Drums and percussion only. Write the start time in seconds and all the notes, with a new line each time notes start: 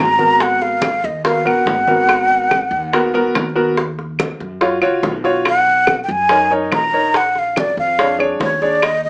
0.19 high conga
0.40 high bongo, high conga
0.61 high bongo, high conga
0.82 high bongo, high conga, claves
1.04 high bongo
1.25 high bongo, high conga
1.46 high conga, claves
1.67 high bongo, low bongo, high conga
1.88 high bongo, high conga
2.09 high bongo, high conga, claves
2.31 high conga
2.51 high bongo, high conga, claves
2.73 high conga
2.93 high bongo, high conga
3.15 high conga
3.35 high bongo, low bongo, high conga, claves
3.77 high bongo, high conga
3.99 high bongo, high conga
4.19 high bongo, high conga, claves
4.40 high bongo
4.61 high bongo, high conga
4.82 high conga, claves
5.03 high bongo, low bongo, high conga
5.25 high bongo
5.45 high bongo, high conga, claves
5.67 high conga
5.87 high bongo, high conga, claves
6.09 high conga
6.29 high bongo, high conga
6.51 high conga
6.72 high bongo, low bongo, high conga, claves
7.14 high bongo, high conga
7.35 high bongo, high conga
7.56 high bongo, high conga, claves
7.78 high bongo
7.98 high bongo, high conga
8.20 high conga, claves
8.41 high bongo, low bongo, high conga
8.62 high bongo
8.82 high bongo, high conga, claves
9.05 high conga